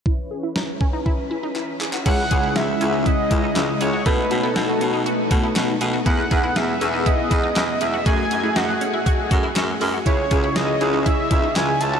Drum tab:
CC |----------------|x---------------|----------------|----------------|
HH |----------------|x-x-x-x-x-x-x-x-|x-x-x-x-x-x-x-x-|x-x-x-x-x-x-x-x-|
CP |------------x-xx|------------x---|------------x---|------------x---|
SD |----o-----------|----o-------o---|----o-------o---|----o-------o---|
BD |o-----o-o-------|o-o-----o-o-----|o---------o-----|o-o-----o-o-----|

CC |----------------|----------------|
HH |x-x-x-x-x-x-x-o-|x-x-x-x-x-x-x-x-|
CP |------------x---|------------x---|
SD |----o-------o---|----o-------o---|
BD |o-------o-o-----|o-o-----o-o-----|